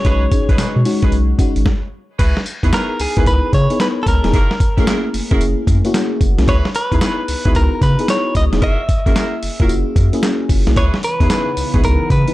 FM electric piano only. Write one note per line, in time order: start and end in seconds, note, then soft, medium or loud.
0.00 0.05 G#3 medium
0.00 0.05 C#4 medium
0.00 0.05 D#4 medium
0.00 0.86 F#4 loud
0.00 0.06 G#4 medium
0.05 0.27 G#3 medium
0.05 0.28 C#4 medium
0.05 0.28 D#4 medium
0.05 0.28 G#4 medium
0.31 0.77 G#3 medium
0.31 0.77 C#4 medium
0.31 0.77 D#4 medium
0.31 0.77 G#4 medium
0.85 1.30 G#3 loud
0.85 1.30 C#4 medium
0.85 1.31 D#4 loud
0.85 1.31 F#4 loud
1.38 1.65 G#3 medium
1.38 1.66 C#4 medium
1.38 1.66 D#4 medium
1.38 1.66 F#4 loud
2.63 3.01 B3 medium
2.63 3.01 D#4 medium
2.63 3.01 E4 medium
2.63 3.02 G#4 medium
3.16 3.55 B3 medium
3.16 3.55 D#4 medium
3.16 3.55 E4 medium
3.16 3.55 A#4 medium
3.70 4.08 B3 medium
3.70 4.08 D#4 medium
3.70 4.09 E4 medium
3.70 4.09 G#4 loud
4.24 4.33 B3 medium
4.24 4.33 D#4 medium
4.24 4.34 E4 medium
4.24 4.34 G#4 loud
4.77 4.82 A3 medium
4.77 5.16 C#4 medium
4.77 5.16 E4 medium
4.77 5.16 G#4 loud
4.84 5.19 A#3 medium
5.31 5.69 A#3 medium
5.31 5.69 C#4 medium
5.31 5.69 E4 medium
5.31 5.70 G#4 loud
5.84 6.22 A#3 loud
5.84 6.23 C#4 loud
5.84 6.23 E4 loud
5.84 6.23 F#4 loud
6.38 6.48 A#3 medium
6.38 6.48 C#4 medium
6.38 6.48 E4 medium
6.38 6.48 G#4 loud
6.91 7.30 B3 medium
6.91 7.30 D#4 medium
6.91 7.30 E4 medium
6.91 7.30 G#4 medium
7.45 7.83 B3 medium
7.45 7.83 D#4 medium
7.45 7.84 E4 medium
7.45 7.84 F#4 medium
7.99 8.37 B3 medium
7.99 8.37 D#4 medium
7.99 8.37 E4 medium
7.99 8.37 G#4 loud
8.52 8.62 B3 medium
8.52 8.62 D#4 medium
8.52 8.62 E4 medium
8.52 8.63 G#4 loud
9.06 9.44 A#3 medium
9.06 9.44 C#4 medium
9.06 9.44 E4 medium
9.06 9.45 G#4 medium
9.60 9.98 A#3 medium
9.60 9.98 C#4 medium
9.60 9.98 E4 medium
9.60 9.65 F4 medium
9.67 10.01 F#4 loud
10.13 10.51 A#3 loud
10.13 10.51 C#4 loud
10.13 10.51 E4 loud
10.13 10.52 G#4 loud
10.67 10.76 A#3 medium
10.67 10.76 C#4 medium
10.67 10.77 E4 medium
10.67 10.77 G#4 loud
11.20 11.58 B3 medium
11.20 11.58 D#4 medium
11.20 11.59 E4 medium
11.20 11.59 G#4 medium
11.74 12.12 B3 medium
11.74 12.12 D#4 medium
11.74 12.12 E4 medium
11.74 12.12 G#4 medium
12.27 12.34 B3 medium
12.27 12.34 D#4 medium
12.27 12.34 E4 medium
12.27 12.34 B4 medium